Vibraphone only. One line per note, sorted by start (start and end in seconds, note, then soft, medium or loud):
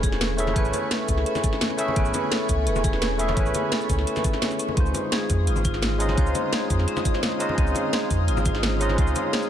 0.00 0.03 G#4 medium
0.00 0.20 G#4 loud
0.00 0.91 A4 loud
0.38 0.48 C#5 medium
0.56 0.72 B4 loud
0.91 1.08 A4 loud
1.26 1.43 C#4 medium
1.44 1.60 A4 medium
1.79 1.88 C#4 medium
1.96 2.06 B3 medium
2.31 2.48 A4 loud
2.67 2.76 G#4 medium
2.84 3.01 G#4 loud
3.19 3.29 C#5 medium
3.37 3.53 B4 loud
3.72 3.89 A4 loud
4.07 4.24 C#4 medium
4.24 4.41 A4 medium
4.59 4.69 C#4 medium
4.77 4.87 C4 medium
5.12 5.29 G#4 loud
5.47 5.57 F4 medium
5.65 5.82 F4 loud
6.00 6.10 C#5 medium
6.17 6.33 C5 loud
6.53 6.69 G#4 loud
6.88 7.04 C#4 medium
7.05 7.22 G#4 medium
7.41 7.50 C#4 medium
7.58 7.68 C4 medium
7.93 8.10 G#4 loud
8.28 8.38 F4 medium
8.46 8.62 F4 loud
8.81 8.90 C#5 medium
8.98 9.14 C5 loud
9.33 9.50 G#4 loud